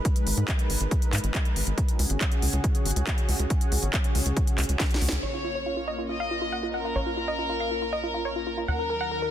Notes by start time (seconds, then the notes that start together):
Already playing: G#3 D#4 A#4 B4
0.05 kick, closed hi-hat
0.16 closed hi-hat
0.27 G#1, open hi-hat
0.37 G#2, closed hi-hat
0.48 kick, clap, closed hi-hat
0.59 closed hi-hat
0.70 G#1, open hi-hat
0.80 G#1, closed hi-hat
0.91 kick, closed hi-hat
1.02 closed hi-hat
1.13 G#2, clap, open hi-hat
1.18 closed hi-hat
1.24 G#1, closed hi-hat
1.34 kick, clap, closed hi-hat
1.45 closed hi-hat
1.56 G#1, open hi-hat
1.67 G#1, closed hi-hat
1.78 C#3 C#4 F#4 G#4, kick, closed hi-hat
1.88 closed hi-hat
1.99 C#2, open hi-hat
2.10 G#1, closed hi-hat
2.21 kick, clap, closed hi-hat
2.32 closed hi-hat
2.42 C#2, open hi-hat
2.53 C#2, closed hi-hat
2.64 kick, closed hi-hat
2.75 closed hi-hat
2.85 G#1, open hi-hat
2.91 closed hi-hat
2.96 C#2, closed hi-hat
3.07 kick, clap, closed hi-hat
3.18 closed hi-hat
3.29 C#2, open hi-hat
3.39 C#2, closed hi-hat
3.50 kick, closed hi-hat
3.61 closed hi-hat
3.72 C#2, open hi-hat
3.83 G#1, closed hi-hat
3.93 kick, clap, closed hi-hat
4.04 closed hi-hat
4.15 C#2, open hi-hat
4.26 C#2, closed hi-hat
4.37 kick, closed hi-hat
4.47 closed hi-hat
4.58 C#2, clap, open hi-hat
4.64 closed hi-hat
4.69 C#2, closed hi-hat
4.80 kick, snare, clap, closed hi-hat
4.91 snare, closed hi-hat
5.01 C#2, open hi-hat
5.09 C#2, snare, closed hi-hat
5.23 A#1 A#3 C#4 F4 C#5
5.34 F4
5.44 F4
5.55 C#5
5.66 F4
5.77 F4
5.88 D#5
5.98 F4
6.09 F4 D#5
6.20 F5
6.31 F4
6.42 F4
6.52 F#5
6.63 F4
6.74 A#4 F#5
6.85 F4
6.96 A#1 C#5
7.06 F4
7.17 F4
7.28 D#5
7.39 F4
7.49 F4
7.60 F5
7.71 F4
7.82 F4
7.93 D#5
8.04 F4
8.14 F4
8.25 C#5
8.36 F4
8.47 F4
8.58 F4
8.68 D#2 D#3 F#3 D#4 A#4 F#5
8.79 A#4
8.90 A#4
9.01 F#5
9.11 A#4
9.22 A#4